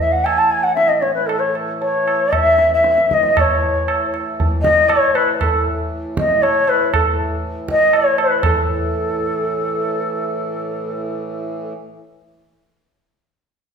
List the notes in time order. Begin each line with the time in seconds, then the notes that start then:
Already playing: A2 E3
0.00 E5
0.12 F#5
0.24 G#5, tabla na
0.38 A5
0.51 G#5
0.63 F#5
0.74 E5, tabla te
0.88 D#5
1.01 C#5, tabla te
1.13 B4
1.26 A4, tabla na
1.39 C#5
1.55 tabla na
1.80 C#5, tabla tin
2.08 tabla na
2.33 E5, tabla na, tabla ge
2.58 tabla te
2.73 E5
2.84 tabla te
2.98 tabla te
3.11 D#5, tabla ke
3.23 tabla te
3.37 C#5, tabla na, tabla ge
3.88 tabla na
4.14 tabla na
4.40 tabla tin, tabla ge
4.61 D#5, tabla ke
4.88 C#5, tabla na
5.15 B4, tabla na
5.35 B4
5.41 A4, tabla na, tabla ge
6.17 D#5, tabla ke
6.42 C#5, tabla na
6.67 B4, tabla na
6.94 A4, tabla na, tabla ge
7.68 D#5, tabla ke
7.93 C#5, tabla na
8.18 B4, tabla na
8.43 A2 E3 A4, tabla na, tabla ge